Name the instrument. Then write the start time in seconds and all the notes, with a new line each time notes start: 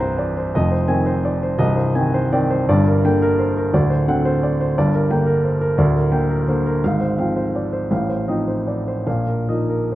grand piano
Already playing: C1 C2 E3 C4 E5 A#5
0.00 C5
0.18 D5
0.37 C5
0.55 F1 F2 D#5
0.71 C5
0.88 D#3 C4 G#5
1.06 C5
1.25 D5
1.43 C5
1.58 C1 C2 D#5
1.76 C5
1.95 D#3 C4 G#5
2.14 C5
2.33 D#3 C4 D5
2.51 C5
2.69 G1 G2 D5
2.87 A#4
3.05 D3 A#3 G5
3.22 A#4
3.39 C5
3.57 A#4
3.73 D1 D2 D5
3.90 C5
4.08 D3 C4 F#5
4.25 C5
4.43 D5
4.61 C5
4.78 G1 G2 D5
4.95 A#4
5.11 D3 A#3 G5
5.26 A#4
5.45 C5
5.61 A#4
5.78 D1 D2 D5
5.96 A#4
6.12 D3 A#3 G5
6.30 A#4
6.48 D3 A#3 C5
6.66 A#4
6.84 G#1 G#2 F5
7.01 C5
7.18 F3 C4 F5
7.36 C5
7.55 D5
7.73 C5
7.91 A1 A2 F5
8.09 C5
8.28 F3 C4 D#4 D#5
8.48 C5
8.68 D5
8.88 C5
9.06 A#1 A#2 F5
9.27 A#4
9.49 F3 A#3 D#4 D#5
9.69 A#4
9.92 C5